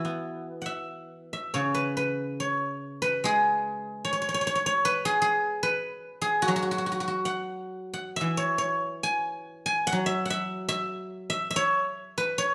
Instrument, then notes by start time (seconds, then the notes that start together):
guzheng
Already playing: E3 E4 F#4 G#4 B4 C#5
0.05 B3
0.62 F#5
0.66 E5
1.33 E5
1.54 C#3 C#5
1.75 B4
1.97 B4
2.40 C#5
3.02 B4
3.24 G#3 G#4
4.05 C#5
4.13 C#5
4.22 C#5
4.29 C#5
4.34 C#5
4.41 C#5
4.47 C#5
4.55 C#5
4.66 C#5
4.85 B4
5.05 G#4
5.22 G#4
5.63 B4
6.22 G#4
6.42 F#4
6.48 F#3 F#4
6.56 F#4
6.63 F#4
6.71 F#4
6.78 F#4
6.86 F#4
6.92 F#4
7.00 F#4
7.08 F#4
7.25 F#5
7.94 F#5
8.16 E5
8.21 E3
8.37 C#5
8.58 C#5
9.03 G#5
9.43 F#5
9.66 G#5
9.87 F#5
9.92 F#3
10.06 E5
10.25 F#5
10.30 E5
10.69 E5
11.30 E5
11.51 E5
11.56 C#5
12.18 B4
12.38 C#5